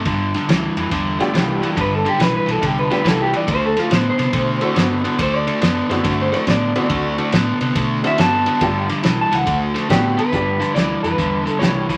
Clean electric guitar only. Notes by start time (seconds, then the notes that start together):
1.81 B4
1.95 A4
2.09 G4
2.23 B4
2.37 B4
2.51 A4
2.66 G4
2.79 B4
2.94 B4
3.08 A4
3.22 G4
3.37 D5
3.52 C5
3.65 A4
3.79 F4
3.94 C5
4.10 C5
5.22 C5
5.36 D5
6.22 C5
6.36 A#4
6.50 D5
8.07 E5
8.20 A5
9.21 A5
9.35 F#5
9.90 G4
10.19 B4
10.75 D5
11.03 B4
11.48 A4
11.59 C#5